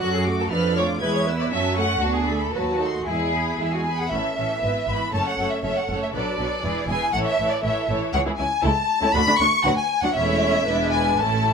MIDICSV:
0, 0, Header, 1, 6, 480
1, 0, Start_track
1, 0, Key_signature, 3, "major"
1, 0, Tempo, 500835
1, 13, Time_signature, 2, 2, 24, 8
1, 1933, Tempo, 522193
1, 4333, Tempo, 502513
1, 9613, Tempo, 525855
1, 10869, End_track
2, 0, Start_track
2, 0, Title_t, "Violin section"
2, 0, Program_c, 0, 48
2, 19, Note_on_c, 0, 90, 46
2, 239, Note_off_c, 0, 90, 0
2, 258, Note_on_c, 0, 86, 43
2, 494, Note_on_c, 0, 89, 44
2, 496, Note_off_c, 0, 86, 0
2, 718, Note_off_c, 0, 89, 0
2, 734, Note_on_c, 0, 86, 42
2, 967, Note_on_c, 0, 92, 45
2, 974, Note_off_c, 0, 86, 0
2, 1193, Note_off_c, 0, 92, 0
2, 1211, Note_on_c, 0, 88, 40
2, 1451, Note_off_c, 0, 88, 0
2, 1457, Note_on_c, 0, 81, 45
2, 1677, Note_off_c, 0, 81, 0
2, 1688, Note_on_c, 0, 85, 45
2, 1932, Note_off_c, 0, 85, 0
2, 1934, Note_on_c, 0, 81, 44
2, 2153, Note_off_c, 0, 81, 0
2, 2172, Note_on_c, 0, 83, 42
2, 2409, Note_off_c, 0, 83, 0
2, 2415, Note_on_c, 0, 81, 38
2, 2636, Note_off_c, 0, 81, 0
2, 2661, Note_on_c, 0, 84, 36
2, 2899, Note_off_c, 0, 84, 0
2, 2904, Note_on_c, 0, 80, 38
2, 3128, Note_off_c, 0, 80, 0
2, 3149, Note_on_c, 0, 83, 34
2, 3389, Note_off_c, 0, 83, 0
2, 3389, Note_on_c, 0, 80, 33
2, 3391, Note_on_c, 0, 76, 46
2, 3495, Note_off_c, 0, 80, 0
2, 3501, Note_off_c, 0, 76, 0
2, 3506, Note_on_c, 0, 80, 48
2, 3630, Note_on_c, 0, 83, 41
2, 3744, Note_on_c, 0, 78, 53
2, 3747, Note_off_c, 0, 80, 0
2, 3864, Note_off_c, 0, 78, 0
2, 3865, Note_on_c, 0, 76, 57
2, 3867, Note_off_c, 0, 83, 0
2, 4570, Note_on_c, 0, 83, 56
2, 4575, Note_off_c, 0, 76, 0
2, 4811, Note_on_c, 0, 81, 62
2, 4812, Note_off_c, 0, 83, 0
2, 4930, Note_off_c, 0, 81, 0
2, 4931, Note_on_c, 0, 78, 55
2, 5167, Note_off_c, 0, 78, 0
2, 5176, Note_on_c, 0, 76, 47
2, 5278, Note_off_c, 0, 76, 0
2, 5290, Note_on_c, 0, 76, 52
2, 5409, Note_off_c, 0, 76, 0
2, 5414, Note_on_c, 0, 78, 44
2, 5653, Note_off_c, 0, 78, 0
2, 5662, Note_on_c, 0, 76, 54
2, 5708, Note_off_c, 0, 76, 0
2, 5773, Note_on_c, 0, 74, 56
2, 6473, Note_off_c, 0, 74, 0
2, 6484, Note_on_c, 0, 80, 69
2, 6720, Note_off_c, 0, 80, 0
2, 6723, Note_on_c, 0, 78, 68
2, 6772, Note_off_c, 0, 78, 0
2, 6841, Note_on_c, 0, 76, 68
2, 7079, Note_off_c, 0, 76, 0
2, 7089, Note_on_c, 0, 74, 57
2, 7194, Note_on_c, 0, 76, 58
2, 7207, Note_off_c, 0, 74, 0
2, 7434, Note_off_c, 0, 76, 0
2, 7672, Note_on_c, 0, 78, 75
2, 7749, Note_off_c, 0, 78, 0
2, 7919, Note_on_c, 0, 80, 64
2, 8151, Note_on_c, 0, 81, 76
2, 8159, Note_off_c, 0, 80, 0
2, 8639, Note_on_c, 0, 83, 93
2, 8640, Note_off_c, 0, 81, 0
2, 8879, Note_on_c, 0, 85, 83
2, 8884, Note_off_c, 0, 83, 0
2, 9121, Note_on_c, 0, 78, 74
2, 9124, Note_off_c, 0, 85, 0
2, 9236, Note_on_c, 0, 80, 70
2, 9245, Note_off_c, 0, 78, 0
2, 9480, Note_off_c, 0, 80, 0
2, 9485, Note_on_c, 0, 78, 81
2, 9606, Note_on_c, 0, 76, 77
2, 9610, Note_off_c, 0, 78, 0
2, 10307, Note_off_c, 0, 76, 0
2, 10324, Note_on_c, 0, 80, 65
2, 10559, Note_on_c, 0, 81, 68
2, 10563, Note_off_c, 0, 80, 0
2, 10869, Note_off_c, 0, 81, 0
2, 10869, End_track
3, 0, Start_track
3, 0, Title_t, "Violin section"
3, 0, Program_c, 1, 48
3, 15, Note_on_c, 1, 66, 71
3, 131, Note_off_c, 1, 66, 0
3, 136, Note_on_c, 1, 68, 56
3, 212, Note_off_c, 1, 68, 0
3, 384, Note_on_c, 1, 69, 61
3, 430, Note_off_c, 1, 69, 0
3, 492, Note_on_c, 1, 71, 65
3, 729, Note_off_c, 1, 71, 0
3, 732, Note_on_c, 1, 73, 70
3, 809, Note_off_c, 1, 73, 0
3, 967, Note_on_c, 1, 71, 69
3, 1088, Note_off_c, 1, 71, 0
3, 1094, Note_on_c, 1, 73, 57
3, 1171, Note_off_c, 1, 73, 0
3, 1348, Note_on_c, 1, 74, 65
3, 1393, Note_off_c, 1, 74, 0
3, 1455, Note_on_c, 1, 76, 67
3, 1688, Note_off_c, 1, 76, 0
3, 1696, Note_on_c, 1, 78, 77
3, 1931, Note_off_c, 1, 78, 0
3, 1939, Note_on_c, 1, 66, 69
3, 2052, Note_on_c, 1, 68, 57
3, 2053, Note_off_c, 1, 66, 0
3, 2289, Note_off_c, 1, 68, 0
3, 2307, Note_on_c, 1, 69, 59
3, 2411, Note_on_c, 1, 71, 57
3, 2417, Note_off_c, 1, 69, 0
3, 2645, Note_on_c, 1, 69, 49
3, 2650, Note_off_c, 1, 71, 0
3, 2719, Note_off_c, 1, 69, 0
3, 2894, Note_on_c, 1, 68, 59
3, 3613, Note_off_c, 1, 68, 0
3, 3865, Note_on_c, 1, 76, 42
3, 3868, Note_on_c, 1, 69, 38
3, 4079, Note_off_c, 1, 69, 0
3, 4080, Note_off_c, 1, 76, 0
3, 4090, Note_on_c, 1, 69, 33
3, 4091, Note_on_c, 1, 76, 33
3, 4316, Note_off_c, 1, 76, 0
3, 4324, Note_off_c, 1, 69, 0
3, 4324, Note_on_c, 1, 71, 36
3, 4327, Note_on_c, 1, 76, 37
3, 4554, Note_off_c, 1, 76, 0
3, 4557, Note_off_c, 1, 71, 0
3, 4565, Note_on_c, 1, 76, 37
3, 4568, Note_on_c, 1, 71, 37
3, 4805, Note_off_c, 1, 76, 0
3, 4806, Note_off_c, 1, 71, 0
3, 4813, Note_on_c, 1, 73, 41
3, 4815, Note_on_c, 1, 69, 42
3, 5044, Note_off_c, 1, 69, 0
3, 5045, Note_off_c, 1, 73, 0
3, 5056, Note_on_c, 1, 69, 34
3, 5056, Note_on_c, 1, 73, 35
3, 5277, Note_off_c, 1, 73, 0
3, 5279, Note_off_c, 1, 69, 0
3, 5289, Note_on_c, 1, 73, 39
3, 5290, Note_on_c, 1, 69, 39
3, 5519, Note_off_c, 1, 69, 0
3, 5522, Note_off_c, 1, 73, 0
3, 5530, Note_on_c, 1, 69, 39
3, 5533, Note_on_c, 1, 73, 39
3, 5758, Note_off_c, 1, 69, 0
3, 5767, Note_on_c, 1, 71, 49
3, 5768, Note_off_c, 1, 73, 0
3, 5769, Note_on_c, 1, 69, 46
3, 5995, Note_off_c, 1, 71, 0
3, 5996, Note_off_c, 1, 69, 0
3, 6007, Note_on_c, 1, 69, 36
3, 6007, Note_on_c, 1, 71, 35
3, 6242, Note_off_c, 1, 71, 0
3, 6243, Note_off_c, 1, 69, 0
3, 6247, Note_on_c, 1, 68, 43
3, 6253, Note_on_c, 1, 71, 37
3, 6478, Note_off_c, 1, 71, 0
3, 6481, Note_off_c, 1, 68, 0
3, 6489, Note_on_c, 1, 71, 37
3, 6491, Note_on_c, 1, 68, 39
3, 6723, Note_off_c, 1, 71, 0
3, 6724, Note_off_c, 1, 68, 0
3, 6737, Note_on_c, 1, 69, 50
3, 6740, Note_on_c, 1, 73, 52
3, 6963, Note_off_c, 1, 73, 0
3, 6967, Note_off_c, 1, 69, 0
3, 6974, Note_on_c, 1, 73, 39
3, 6977, Note_on_c, 1, 69, 36
3, 7199, Note_off_c, 1, 73, 0
3, 7200, Note_off_c, 1, 69, 0
3, 7211, Note_on_c, 1, 73, 47
3, 7212, Note_on_c, 1, 69, 48
3, 7443, Note_off_c, 1, 69, 0
3, 7443, Note_off_c, 1, 73, 0
3, 7453, Note_on_c, 1, 73, 46
3, 7455, Note_on_c, 1, 69, 48
3, 7676, Note_off_c, 1, 73, 0
3, 7685, Note_off_c, 1, 69, 0
3, 7688, Note_on_c, 1, 68, 57
3, 7688, Note_on_c, 1, 73, 61
3, 7735, Note_off_c, 1, 73, 0
3, 7736, Note_off_c, 1, 68, 0
3, 7808, Note_on_c, 1, 68, 36
3, 7813, Note_on_c, 1, 64, 37
3, 7856, Note_off_c, 1, 68, 0
3, 7859, Note_off_c, 1, 64, 0
3, 7921, Note_on_c, 1, 61, 42
3, 7923, Note_on_c, 1, 64, 44
3, 7970, Note_off_c, 1, 61, 0
3, 7972, Note_off_c, 1, 64, 0
3, 8156, Note_on_c, 1, 64, 61
3, 8160, Note_on_c, 1, 69, 64
3, 8207, Note_off_c, 1, 64, 0
3, 8210, Note_off_c, 1, 69, 0
3, 8527, Note_on_c, 1, 64, 52
3, 8530, Note_on_c, 1, 61, 62
3, 8575, Note_off_c, 1, 64, 0
3, 8577, Note_off_c, 1, 61, 0
3, 8650, Note_on_c, 1, 66, 78
3, 8652, Note_on_c, 1, 69, 64
3, 8698, Note_off_c, 1, 66, 0
3, 8699, Note_off_c, 1, 69, 0
3, 8769, Note_on_c, 1, 62, 35
3, 8769, Note_on_c, 1, 66, 38
3, 8817, Note_off_c, 1, 62, 0
3, 8817, Note_off_c, 1, 66, 0
3, 8894, Note_on_c, 1, 62, 39
3, 8895, Note_on_c, 1, 57, 43
3, 8941, Note_off_c, 1, 62, 0
3, 8942, Note_off_c, 1, 57, 0
3, 9133, Note_on_c, 1, 66, 67
3, 9134, Note_on_c, 1, 71, 70
3, 9180, Note_off_c, 1, 66, 0
3, 9181, Note_off_c, 1, 71, 0
3, 9488, Note_on_c, 1, 62, 47
3, 9489, Note_on_c, 1, 66, 53
3, 9537, Note_off_c, 1, 62, 0
3, 9538, Note_off_c, 1, 66, 0
3, 9609, Note_on_c, 1, 64, 60
3, 9610, Note_on_c, 1, 73, 60
3, 10050, Note_off_c, 1, 64, 0
3, 10050, Note_off_c, 1, 73, 0
3, 10084, Note_on_c, 1, 71, 55
3, 10085, Note_on_c, 1, 64, 57
3, 10554, Note_off_c, 1, 64, 0
3, 10565, Note_on_c, 1, 64, 48
3, 10565, Note_on_c, 1, 69, 50
3, 10567, Note_off_c, 1, 71, 0
3, 10869, Note_off_c, 1, 64, 0
3, 10869, Note_off_c, 1, 69, 0
3, 10869, End_track
4, 0, Start_track
4, 0, Title_t, "Viola section"
4, 0, Program_c, 2, 48
4, 17, Note_on_c, 2, 54, 49
4, 17, Note_on_c, 2, 69, 53
4, 238, Note_off_c, 2, 54, 0
4, 238, Note_off_c, 2, 69, 0
4, 251, Note_on_c, 2, 57, 42
4, 251, Note_on_c, 2, 66, 47
4, 490, Note_on_c, 2, 69, 44
4, 491, Note_on_c, 2, 53, 44
4, 493, Note_off_c, 2, 57, 0
4, 493, Note_off_c, 2, 66, 0
4, 716, Note_off_c, 2, 69, 0
4, 717, Note_off_c, 2, 53, 0
4, 737, Note_on_c, 2, 65, 47
4, 738, Note_on_c, 2, 57, 50
4, 974, Note_on_c, 2, 56, 49
4, 975, Note_on_c, 2, 68, 48
4, 976, Note_off_c, 2, 57, 0
4, 976, Note_off_c, 2, 65, 0
4, 1196, Note_off_c, 2, 56, 0
4, 1197, Note_off_c, 2, 68, 0
4, 1211, Note_on_c, 2, 71, 44
4, 1213, Note_on_c, 2, 59, 43
4, 1451, Note_off_c, 2, 71, 0
4, 1452, Note_off_c, 2, 59, 0
4, 1454, Note_on_c, 2, 54, 45
4, 1456, Note_on_c, 2, 66, 39
4, 1676, Note_off_c, 2, 54, 0
4, 1677, Note_off_c, 2, 66, 0
4, 1692, Note_on_c, 2, 57, 47
4, 1692, Note_on_c, 2, 69, 41
4, 1932, Note_on_c, 2, 59, 41
4, 1932, Note_on_c, 2, 66, 49
4, 1934, Note_off_c, 2, 57, 0
4, 1934, Note_off_c, 2, 69, 0
4, 2152, Note_off_c, 2, 59, 0
4, 2152, Note_off_c, 2, 66, 0
4, 2164, Note_on_c, 2, 57, 43
4, 2167, Note_on_c, 2, 69, 40
4, 2399, Note_on_c, 2, 66, 38
4, 2400, Note_on_c, 2, 54, 37
4, 2405, Note_off_c, 2, 57, 0
4, 2407, Note_off_c, 2, 69, 0
4, 2627, Note_off_c, 2, 54, 0
4, 2627, Note_off_c, 2, 66, 0
4, 2644, Note_on_c, 2, 57, 36
4, 2646, Note_on_c, 2, 63, 36
4, 2883, Note_on_c, 2, 56, 38
4, 2883, Note_on_c, 2, 64, 40
4, 2890, Note_off_c, 2, 57, 0
4, 2891, Note_off_c, 2, 63, 0
4, 3116, Note_off_c, 2, 56, 0
4, 3117, Note_off_c, 2, 64, 0
4, 3127, Note_on_c, 2, 68, 36
4, 3128, Note_on_c, 2, 59, 39
4, 3377, Note_on_c, 2, 56, 33
4, 3377, Note_on_c, 2, 64, 33
4, 3378, Note_off_c, 2, 68, 0
4, 3379, Note_off_c, 2, 59, 0
4, 3620, Note_on_c, 2, 59, 34
4, 3621, Note_on_c, 2, 68, 33
4, 3624, Note_off_c, 2, 56, 0
4, 3624, Note_off_c, 2, 64, 0
4, 3855, Note_on_c, 2, 61, 39
4, 3856, Note_on_c, 2, 52, 38
4, 3862, Note_off_c, 2, 59, 0
4, 3862, Note_off_c, 2, 68, 0
4, 4081, Note_off_c, 2, 52, 0
4, 4081, Note_off_c, 2, 61, 0
4, 4092, Note_on_c, 2, 52, 35
4, 4092, Note_on_c, 2, 61, 32
4, 4310, Note_off_c, 2, 52, 0
4, 4321, Note_on_c, 2, 52, 38
4, 4322, Note_on_c, 2, 59, 37
4, 4325, Note_off_c, 2, 61, 0
4, 4558, Note_off_c, 2, 52, 0
4, 4560, Note_off_c, 2, 59, 0
4, 4570, Note_on_c, 2, 52, 37
4, 4572, Note_on_c, 2, 59, 36
4, 4807, Note_off_c, 2, 52, 0
4, 4808, Note_off_c, 2, 59, 0
4, 4808, Note_on_c, 2, 57, 44
4, 4808, Note_on_c, 2, 61, 40
4, 5034, Note_off_c, 2, 57, 0
4, 5035, Note_off_c, 2, 61, 0
4, 5046, Note_on_c, 2, 57, 37
4, 5046, Note_on_c, 2, 61, 35
4, 5277, Note_off_c, 2, 57, 0
4, 5280, Note_off_c, 2, 61, 0
4, 5289, Note_on_c, 2, 57, 39
4, 5291, Note_on_c, 2, 61, 34
4, 5517, Note_off_c, 2, 57, 0
4, 5517, Note_off_c, 2, 61, 0
4, 5528, Note_on_c, 2, 61, 39
4, 5529, Note_on_c, 2, 57, 40
4, 5765, Note_off_c, 2, 57, 0
4, 5765, Note_off_c, 2, 61, 0
4, 5767, Note_on_c, 2, 54, 46
4, 5768, Note_on_c, 2, 62, 43
4, 5995, Note_off_c, 2, 54, 0
4, 5996, Note_off_c, 2, 62, 0
4, 6006, Note_on_c, 2, 54, 41
4, 6007, Note_on_c, 2, 62, 38
4, 6242, Note_off_c, 2, 54, 0
4, 6243, Note_off_c, 2, 62, 0
4, 6243, Note_on_c, 2, 52, 41
4, 6245, Note_on_c, 2, 64, 39
4, 6471, Note_off_c, 2, 52, 0
4, 6471, Note_off_c, 2, 64, 0
4, 6482, Note_on_c, 2, 64, 40
4, 6483, Note_on_c, 2, 52, 43
4, 6708, Note_off_c, 2, 64, 0
4, 6709, Note_off_c, 2, 52, 0
4, 6719, Note_on_c, 2, 64, 46
4, 6720, Note_on_c, 2, 52, 45
4, 6947, Note_off_c, 2, 52, 0
4, 6949, Note_off_c, 2, 64, 0
4, 6958, Note_on_c, 2, 52, 49
4, 6961, Note_on_c, 2, 64, 46
4, 7186, Note_off_c, 2, 64, 0
4, 7187, Note_off_c, 2, 52, 0
4, 7197, Note_on_c, 2, 64, 43
4, 7198, Note_on_c, 2, 52, 47
4, 7422, Note_off_c, 2, 64, 0
4, 7424, Note_off_c, 2, 52, 0
4, 7434, Note_on_c, 2, 64, 52
4, 7435, Note_on_c, 2, 52, 43
4, 7663, Note_off_c, 2, 52, 0
4, 7664, Note_off_c, 2, 64, 0
4, 7674, Note_on_c, 2, 52, 62
4, 7675, Note_on_c, 2, 64, 62
4, 7724, Note_off_c, 2, 52, 0
4, 7725, Note_off_c, 2, 64, 0
4, 7798, Note_on_c, 2, 52, 43
4, 7798, Note_on_c, 2, 64, 43
4, 7847, Note_off_c, 2, 64, 0
4, 7848, Note_off_c, 2, 52, 0
4, 7918, Note_on_c, 2, 64, 47
4, 7921, Note_on_c, 2, 52, 45
4, 7968, Note_off_c, 2, 64, 0
4, 7970, Note_off_c, 2, 52, 0
4, 8157, Note_on_c, 2, 64, 69
4, 8159, Note_on_c, 2, 57, 62
4, 8207, Note_off_c, 2, 64, 0
4, 8208, Note_off_c, 2, 57, 0
4, 8523, Note_on_c, 2, 57, 57
4, 8523, Note_on_c, 2, 64, 50
4, 8572, Note_off_c, 2, 57, 0
4, 8572, Note_off_c, 2, 64, 0
4, 8644, Note_on_c, 2, 57, 71
4, 8646, Note_on_c, 2, 62, 70
4, 8693, Note_off_c, 2, 57, 0
4, 8694, Note_off_c, 2, 62, 0
4, 8768, Note_on_c, 2, 62, 51
4, 8770, Note_on_c, 2, 57, 47
4, 8817, Note_off_c, 2, 62, 0
4, 8818, Note_off_c, 2, 57, 0
4, 8890, Note_on_c, 2, 57, 55
4, 8890, Note_on_c, 2, 62, 48
4, 8937, Note_off_c, 2, 57, 0
4, 8938, Note_off_c, 2, 62, 0
4, 9131, Note_on_c, 2, 62, 62
4, 9132, Note_on_c, 2, 54, 57
4, 9178, Note_off_c, 2, 62, 0
4, 9180, Note_off_c, 2, 54, 0
4, 9495, Note_on_c, 2, 54, 54
4, 9496, Note_on_c, 2, 62, 57
4, 9543, Note_off_c, 2, 54, 0
4, 9544, Note_off_c, 2, 62, 0
4, 9620, Note_on_c, 2, 57, 54
4, 9620, Note_on_c, 2, 61, 59
4, 10055, Note_off_c, 2, 57, 0
4, 10056, Note_off_c, 2, 61, 0
4, 10087, Note_on_c, 2, 56, 52
4, 10089, Note_on_c, 2, 62, 54
4, 10569, Note_off_c, 2, 56, 0
4, 10569, Note_on_c, 2, 57, 49
4, 10569, Note_on_c, 2, 61, 47
4, 10570, Note_off_c, 2, 62, 0
4, 10869, Note_off_c, 2, 57, 0
4, 10869, Note_off_c, 2, 61, 0
4, 10869, End_track
5, 0, Start_track
5, 0, Title_t, "Cello section"
5, 0, Program_c, 3, 48
5, 0, Note_on_c, 3, 66, 54
5, 482, Note_off_c, 3, 66, 0
5, 502, Note_on_c, 3, 62, 51
5, 977, Note_on_c, 3, 64, 55
5, 979, Note_off_c, 3, 62, 0
5, 1444, Note_off_c, 3, 64, 0
5, 1460, Note_on_c, 3, 61, 53
5, 1937, Note_off_c, 3, 61, 0
5, 1937, Note_on_c, 3, 62, 50
5, 2400, Note_off_c, 3, 62, 0
5, 2409, Note_on_c, 3, 66, 50
5, 2884, Note_off_c, 3, 66, 0
5, 2894, Note_on_c, 3, 64, 40
5, 3336, Note_off_c, 3, 64, 0
5, 3385, Note_on_c, 3, 64, 44
5, 3433, Note_off_c, 3, 64, 0
5, 3508, Note_on_c, 3, 66, 44
5, 3582, Note_off_c, 3, 66, 0
5, 3754, Note_on_c, 3, 68, 38
5, 3800, Note_off_c, 3, 68, 0
5, 3865, Note_on_c, 3, 45, 39
5, 3939, Note_off_c, 3, 45, 0
5, 4102, Note_on_c, 3, 45, 30
5, 4176, Note_off_c, 3, 45, 0
5, 4332, Note_on_c, 3, 44, 39
5, 4408, Note_off_c, 3, 44, 0
5, 4574, Note_on_c, 3, 44, 38
5, 4651, Note_off_c, 3, 44, 0
5, 4821, Note_on_c, 3, 42, 43
5, 4897, Note_off_c, 3, 42, 0
5, 5054, Note_on_c, 3, 42, 35
5, 5130, Note_off_c, 3, 42, 0
5, 5294, Note_on_c, 3, 42, 43
5, 5370, Note_off_c, 3, 42, 0
5, 5534, Note_on_c, 3, 42, 36
5, 5611, Note_off_c, 3, 42, 0
5, 5774, Note_on_c, 3, 47, 43
5, 5851, Note_off_c, 3, 47, 0
5, 6008, Note_on_c, 3, 47, 37
5, 6085, Note_off_c, 3, 47, 0
5, 6252, Note_on_c, 3, 40, 46
5, 6329, Note_off_c, 3, 40, 0
5, 6494, Note_on_c, 3, 40, 45
5, 6571, Note_off_c, 3, 40, 0
5, 6729, Note_on_c, 3, 45, 49
5, 6805, Note_off_c, 3, 45, 0
5, 6968, Note_on_c, 3, 45, 37
5, 7044, Note_off_c, 3, 45, 0
5, 7204, Note_on_c, 3, 45, 51
5, 7281, Note_off_c, 3, 45, 0
5, 7447, Note_on_c, 3, 45, 56
5, 7523, Note_off_c, 3, 45, 0
5, 7690, Note_on_c, 3, 37, 60
5, 7737, Note_off_c, 3, 37, 0
5, 7812, Note_on_c, 3, 37, 45
5, 7859, Note_off_c, 3, 37, 0
5, 7928, Note_on_c, 3, 37, 40
5, 7976, Note_off_c, 3, 37, 0
5, 8170, Note_on_c, 3, 37, 74
5, 8218, Note_off_c, 3, 37, 0
5, 8527, Note_on_c, 3, 37, 49
5, 8576, Note_off_c, 3, 37, 0
5, 8648, Note_on_c, 3, 38, 65
5, 8696, Note_off_c, 3, 38, 0
5, 8767, Note_on_c, 3, 38, 47
5, 8816, Note_off_c, 3, 38, 0
5, 8887, Note_on_c, 3, 38, 46
5, 8935, Note_off_c, 3, 38, 0
5, 9120, Note_on_c, 3, 38, 67
5, 9170, Note_off_c, 3, 38, 0
5, 9485, Note_on_c, 3, 38, 44
5, 9535, Note_off_c, 3, 38, 0
5, 9610, Note_on_c, 3, 40, 50
5, 10050, Note_off_c, 3, 40, 0
5, 10082, Note_on_c, 3, 40, 53
5, 10557, Note_off_c, 3, 40, 0
5, 10567, Note_on_c, 3, 45, 45
5, 10869, Note_off_c, 3, 45, 0
5, 10869, End_track
6, 0, Start_track
6, 0, Title_t, "Double bass section"
6, 0, Program_c, 4, 48
6, 16, Note_on_c, 4, 42, 57
6, 438, Note_off_c, 4, 42, 0
6, 496, Note_on_c, 4, 41, 57
6, 919, Note_off_c, 4, 41, 0
6, 977, Note_on_c, 4, 40, 56
6, 1397, Note_off_c, 4, 40, 0
6, 1456, Note_on_c, 4, 42, 53
6, 1878, Note_off_c, 4, 42, 0
6, 1934, Note_on_c, 4, 38, 54
6, 2352, Note_off_c, 4, 38, 0
6, 2408, Note_on_c, 4, 39, 49
6, 2835, Note_off_c, 4, 39, 0
6, 2890, Note_on_c, 4, 40, 44
6, 3325, Note_off_c, 4, 40, 0
6, 3383, Note_on_c, 4, 40, 42
6, 3809, Note_off_c, 4, 40, 0
6, 3864, Note_on_c, 4, 33, 44
6, 3937, Note_off_c, 4, 33, 0
6, 4105, Note_on_c, 4, 33, 37
6, 4178, Note_off_c, 4, 33, 0
6, 4334, Note_on_c, 4, 32, 40
6, 4411, Note_off_c, 4, 32, 0
6, 4577, Note_on_c, 4, 32, 43
6, 4653, Note_off_c, 4, 32, 0
6, 4817, Note_on_c, 4, 30, 46
6, 4893, Note_off_c, 4, 30, 0
6, 5059, Note_on_c, 4, 30, 36
6, 5136, Note_off_c, 4, 30, 0
6, 5300, Note_on_c, 4, 30, 43
6, 5376, Note_off_c, 4, 30, 0
6, 5536, Note_on_c, 4, 30, 43
6, 5612, Note_off_c, 4, 30, 0
6, 5772, Note_on_c, 4, 35, 48
6, 5848, Note_off_c, 4, 35, 0
6, 6007, Note_on_c, 4, 35, 38
6, 6084, Note_off_c, 4, 35, 0
6, 6253, Note_on_c, 4, 28, 44
6, 6329, Note_off_c, 4, 28, 0
6, 6486, Note_on_c, 4, 28, 49
6, 6562, Note_off_c, 4, 28, 0
6, 6726, Note_on_c, 4, 33, 50
6, 6803, Note_off_c, 4, 33, 0
6, 6966, Note_on_c, 4, 33, 42
6, 7043, Note_off_c, 4, 33, 0
6, 7205, Note_on_c, 4, 33, 51
6, 7281, Note_off_c, 4, 33, 0
6, 7445, Note_on_c, 4, 33, 52
6, 7522, Note_off_c, 4, 33, 0
6, 7687, Note_on_c, 4, 37, 67
6, 7735, Note_off_c, 4, 37, 0
6, 7927, Note_on_c, 4, 37, 41
6, 7975, Note_off_c, 4, 37, 0
6, 8165, Note_on_c, 4, 37, 65
6, 8213, Note_off_c, 4, 37, 0
6, 8646, Note_on_c, 4, 38, 76
6, 8694, Note_off_c, 4, 38, 0
6, 8887, Note_on_c, 4, 38, 42
6, 8936, Note_off_c, 4, 38, 0
6, 9130, Note_on_c, 4, 38, 70
6, 9178, Note_off_c, 4, 38, 0
6, 9614, Note_on_c, 4, 28, 59
6, 10052, Note_off_c, 4, 28, 0
6, 10085, Note_on_c, 4, 28, 51
6, 10558, Note_off_c, 4, 28, 0
6, 10569, Note_on_c, 4, 33, 53
6, 10869, Note_off_c, 4, 33, 0
6, 10869, End_track
0, 0, End_of_file